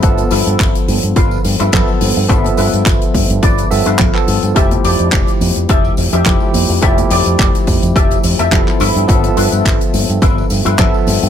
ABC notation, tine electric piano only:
X:1
M:4/4
L:1/16
Q:"Swing 16ths" 1/4=106
K:Gmix
V:1 name="Tine electric piano"
[F,B,A]12 [F,B,A]4 | [F,B,Ae]8- [F,B,Ae]2 [F,B,Ae]3 [F,B,A]3 | [F,A,EG]12 [F,A,EG]4 | [F,A,EG]12 [F,B,EA]4 |
[F,B,Ae]12 [F,B,Ae]4 |]